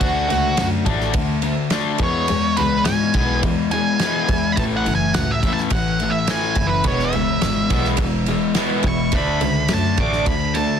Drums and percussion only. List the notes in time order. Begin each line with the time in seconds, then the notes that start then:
0.01 kick, ride
0.30 ride
0.57 snare, ride
0.86 kick, ride
1.01 snare
1.13 kick, ride
1.42 ride
1.70 snare, ride
1.98 kick, ride
2.28 ride
2.57 ride
2.85 snare, ride
3.14 kick, ride
3.43 kick, ride
3.71 ride
3.99 snare, ride
4.28 kick, ride
4.57 kick, ride
4.86 ride
5.14 snare, ride
5.43 kick, ride
5.58 snare
5.70 kick, ride
6.00 ride
6.27 snare, ride
6.55 kick, ride
6.84 kick, ride
6.99 snare
7.13 ride
7.42 snare, ride
7.70 kick, ride
7.85 snare
7.97 kick, ride
8.26 ride
8.55 snare, ride
8.83 kick, ride
9.12 kick, ride
9.41 ride
9.68 snare, ride
9.97 kick, ride
10.13 snare
10.26 kick, ride
10.55 ride